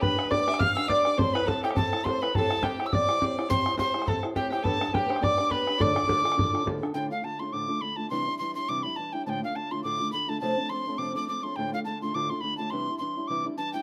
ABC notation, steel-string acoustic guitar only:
X:1
M:4/4
L:1/8
Q:"Swing" 1/4=208
K:Ddor
V:1 name="Steel-string acoustic guitar"
[B,DGB] [DGB] [B,DGB] [DGB] [B,DGB] [DGB] [B,DGB] [DGB] | [CEAc] [EAc] [CEAc] [EAc] [CEAc] [EAc] [CEAc] [EA] | [CEGc] [EGc] [CEGc] [EGc] [CEGc] [EGc] [CEGc] [EGc] | [CEGc] [Ec] [CEG] [EGc] [CEGc] [EGc] [CEGc] [EGc] |
[B,DGB] [DGB] [B,DGB] [DGB] [B,DGB] [DGB] [B,DGB] [DGB] | [D,,A,,D,DFA] [D,DFA] [D,,A,,D,DFA] [D,DFA] [D,DFA] [D,DFA] [D,,A,,D,DFA] [D,DFA] | [D,,A,,D,A,DF] [D,A,DF] [D,A,DF] [D,A,DF] [D,,A,,D,A,DF] [D,A,DF] [D,A,DF] [D,A,DF] | [C,E,G,DE] [G,DE] [E,G,DE] [G,DE] [C,E,G,DE] [G,DE] [E,G,DE] [G,DE] |
[D,,A,,D,A,DF] [D,A,DF] [D,A,DF] [D,A,DF] [D,,A,,D,A,DF] [D,A,DF] [D,A,DF] [D,A,DF] | [F,,C,F,A,CD] [F,CD] [F,A,CD] [F,A,CD] [F,,C,F,A,CD] [F,A,CD] [F,A,CD] [F,A,CD] | [D,,A,,D,A,DF] [D,A,DF] [D,A,DF] [D,A,DF] [D,,A,,D,A,DF] [D,A,DF] [D,A,DF] [D,A,DF] | [C,E,G,DE] [G,DE] [E,G,DE] [G,DE] [C,E,G,DE] [G,DE] [E,G,DE] [G,DE] |]